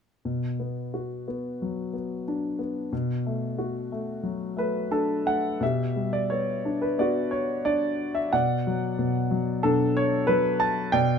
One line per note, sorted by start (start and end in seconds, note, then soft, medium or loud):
0.25 2.88 B2 soft
0.60 1.26 B3 soft
0.94 2.23 F#4 soft
1.28 1.92 B3 soft
1.62 2.89 F#3 soft
1.94 2.57 B3 soft
2.28 2.91 D4 soft
2.59 2.91 B3 soft
2.93 5.58 B2 soft
3.26 3.91 A3 soft
3.58 4.88 F#4 soft
3.92 4.55 A3 soft
4.23 5.58 F#3 soft
4.57 5.24 A3 soft
4.57 4.90 B4 medium
4.91 5.59 D4 soft
4.91 5.24 A4 medium
5.26 5.60 A3 soft
5.26 5.63 F#5 medium
5.61 8.29 B2 soft
5.61 6.95 G4 soft
5.61 6.15 E5 medium
5.96 7.29 G3 soft
6.13 6.31 D5 medium
6.30 6.97 B3 soft
6.30 6.83 C#5 medium
6.65 7.64 D4 soft
6.82 6.97 B4 medium
6.98 8.29 B3 soft
6.98 8.30 F#4 medium
6.98 7.34 D5 medium
7.31 7.67 C#5 medium
7.65 8.31 D4 soft
7.65 8.18 D5 medium
8.15 8.33 E5 medium
8.33 8.97 B2 soft
8.33 9.60 D5 medium
8.33 9.68 F#5 medium
8.67 9.30 F#3 soft
8.99 9.63 B2 soft
9.31 10.27 F#3 soft
9.63 10.90 B2 soft
9.63 10.90 D4 medium
9.63 9.94 A4 medium
9.97 10.30 C#5 medium
10.27 10.92 F#3 soft
10.27 10.61 B4 medium
10.60 10.94 A5 medium
10.92 11.19 B2 medium
10.92 11.19 D5 medium
10.92 11.19 G5 medium